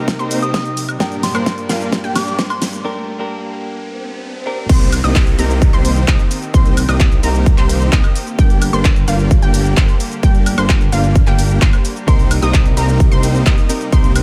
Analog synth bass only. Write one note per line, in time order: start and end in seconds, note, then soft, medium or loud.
4.69 5.02 C2 medium
5.04 5.36 C2 medium
5.39 5.71 C2 loud
5.73 6.06 C2 loud
6.08 6.18 C2 medium
6.54 6.86 C2 medium
6.89 7.21 C2 loud
7.23 7.56 C2 loud
7.58 7.90 C2 loud
7.92 8.03 C2 loud
8.39 8.71 G1 loud
8.73 9.06 G1 medium
9.08 9.40 G1 loud
9.42 9.75 G1 loud
9.77 9.87 G1 loud
10.23 10.56 G1 loud
10.58 10.90 G1 loud
10.92 11.25 G1 loud
11.27 11.59 G1 loud
11.62 11.72 G1 medium
12.08 12.40 C2 medium
12.42 12.75 C2 loud
12.77 13.09 C2 loud
13.12 13.44 C2 medium
13.46 13.57 C2 loud
13.92 14.23 C2 loud